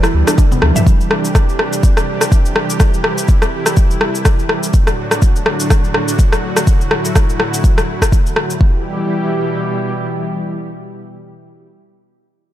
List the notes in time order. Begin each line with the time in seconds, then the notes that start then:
Already playing: B2 E3 G3 E4 A4
0.03 E4, cross-stick, muted conga, cabasa
0.14 D2
0.27 D4, cross-stick, muted conga, high conga, cabasa
0.38 D4, kick, cabasa
0.51 B3, muted conga, low conga, cabasa
0.62 D2, cross-stick, high conga
0.75 E5, mid tom, high conga, cabasa
0.86 C3 D4 G4, kick, cabasa
1.01 cabasa
1.11 cross-stick
1.25 cabasa
1.35 kick, cross-stick, cabasa
1.49 cabasa
1.59 cross-stick
1.73 cabasa
1.83 kick, cabasa
1.97 cross-stick, cabasa
2.21 cross-stick, cabasa
2.32 kick, cabasa
2.46 cabasa
2.56 cross-stick
2.70 cabasa
2.80 E4, kick, cross-stick, cabasa
2.94 cabasa
3.04 cross-stick
3.18 cabasa
3.28 kick, cabasa
3.42 cross-stick, cabasa
3.66 cross-stick, cabasa
3.77 kick, cabasa
3.91 cabasa
4.01 cross-stick
4.15 cabasa
4.25 kick, cross-stick, cabasa
4.39 cabasa
4.49 cross-stick
4.63 cabasa
4.73 A2 D3 F#3 D4 F#4, kick, cabasa
4.87 cross-stick, cabasa
5.11 cross-stick, cabasa
5.22 kick, cabasa
5.36 cabasa
5.46 cross-stick
5.60 cabasa
5.70 kick, cross-stick, cabasa
5.84 cabasa
5.94 cross-stick
6.08 cabasa
6.19 kick, cabasa
6.32 cross-stick, cabasa
6.57 cross-stick, cabasa
6.67 E4, kick, cabasa
6.81 cabasa
6.91 cross-stick
7.05 cabasa
7.16 kick, cross-stick, cabasa
7.30 cabasa
7.40 cross-stick
7.54 cabasa
7.64 kick, cabasa
7.78 cross-stick, cabasa
8.02 kick, cross-stick, cabasa
8.12 kick, cabasa
8.26 cabasa
8.36 cross-stick
8.50 cabasa
8.61 B2 E3 G3 E4 G4, kick